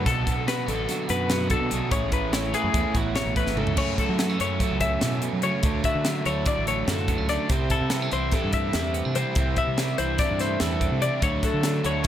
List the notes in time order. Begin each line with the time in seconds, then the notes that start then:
0.05 B1 B2 F#3 B3 D4 F#4 A4, kick, closed hi-hat
0.25 B3 D4 F#4, kick, closed hi-hat
0.46 F#3 B3 D4 F#4 B4, snare, closed hi-hat
0.66 A1 B2 D3 F#3 B3 D4 F#4 A4, closed hi-hat
0.71 A4
0.87 F#3 B3 D4 F#4, snare, closed hi-hat
1.08 F#2 B2 B3 D4 F#4 B4, closed hi-hat
1.29 B2 F#3 B3 D4 F#4, snare, closed hi-hat
1.50 B3 D4 F#4 A4, kick, closed hi-hat
1.61 B2
1.70 B1 B2 F#3 B3 D4 F#4, closed hi-hat
1.74 G#4
1.90 A1 A2 E3 A3 C#4 E4 G#4 C#5, kick, closed hi-hat
2.12 A3 C#4 E4 B4, kick, closed hi-hat
2.33 E3 A3 C#4 E4 C#5, snare, closed hi-hat
2.53 A2 E3 A3 C#4 E4 G#4 B4, closed hi-hat
2.64 F#2
2.74 E2 E3 A3 C#4 E4, kick, closed hi-hat
2.94 A1 E2 A3 C#4 E4 F#4, kick, closed hi-hat
3.15 A2 B2 E3 A3 C#4 E4 C#5, snare, closed hi-hat
3.26 A1
3.35 A2 A3 C#4 E4 B4, kick, closed hi-hat
3.46 G#1, snare
3.55 G#2 A2 E3 A3 C#4 E4 A4, mid tom
3.67 C#2, floor tom
3.76 F#2 C#3 F#3 A3 C#4 E4 C#5, kick, crash
3.98 E4 A4, kick, closed hi-hat
4.09 F#3
4.18 C#3 F#3 A3 B3 C#4, snare, closed hi-hat
4.30 C#4
4.38 F#2 F#3 A3 C#4 E4 C#5, closed hi-hat
4.59 F#2 C#3 F#3 A3 C#4 A4, kick, closed hi-hat
4.71 C#2
4.80 F#3 A3 C#4 E5, kick, closed hi-hat
5.01 A2 B2 C#3 F#3 A3 C#4, snare, closed hi-hat
5.22 B2, closed hi-hat
5.33 F#3
5.42 F#2 C#3 F#3 A3 C#4 C#5, closed hi-hat
5.62 D2 D3 F#3 A3 D4, kick, closed hi-hat
5.84 F#4 E5, kick, closed hi-hat
5.95 D3
6.04 D3 F#3 A3 D4, snare, closed hi-hat
6.25 D2 F#3 A3 D4 E4 C#5, closed hi-hat
6.45 D3 F#3 A3 D4 D5, kick, closed hi-hat
6.58 A1
6.66 F#3 A3 D4 C#5, closed hi-hat
6.87 F#2 A2 D3 F#3 A3 D4 F#4 A4, snare, closed hi-hat
7.08 B3, kick, closed hi-hat
7.18 C#2 C#4
7.28 D3 F#3 A3 D4 D5, snare, closed hi-hat
7.49 C2 C3 G3 C4 E4 C5, kick, closed hi-hat
7.70 E4 A4, kick, closed hi-hat
7.81 C3
7.90 C3 G3 B3 C4 E4, snare, closed hi-hat
8.02 D4
8.11 C2 E3 G3 C4 E4 C5, closed hi-hat
8.32 C3 G3 C4 D4 E4 A4, kick, snare, closed hi-hat
8.44 G2
8.53 G3 A3 C4 E4 E5, kick, closed hi-hat
8.73 E2 G2 C3 G3 C4 E4, snare, closed hi-hat
8.94 B3, closed hi-hat
9.05 C3 D4
9.15 C3 G3 C4 E4 C5, closed hi-hat
9.35 C2 C3 G3 C4 E4, kick, closed hi-hat
9.56 E4 E5, kick, closed hi-hat
9.67 C3
9.77 C3 G3 C4 D4 E4, snare, closed hi-hat
9.98 C2 E3 G3 C4 E4 C5, closed hi-hat
10.18 C3 G3 C4 D4 E4 D5, kick, snare, closed hi-hat
10.30 G2
10.39 G3 A3 C4 E4 C5, snare, closed hi-hat
10.60 E2 G2 C3 G3 C4 E4 A4, snare, closed hi-hat
10.81 D4, kick, closed hi-hat
10.91 C3
11.01 C3 G3 C4 E4 D5, closed hi-hat
11.21 D2 D3 F#3 A3 D4 C#5, kick, closed hi-hat
11.26 E4
11.43 F#4 A4, kick, snare, closed hi-hat
11.53 D3
11.63 D3 F#3 A3 D4, snare, closed hi-hat
11.83 D2 F#3 A3 D4 E4 C#5, closed hi-hat
12.03 D3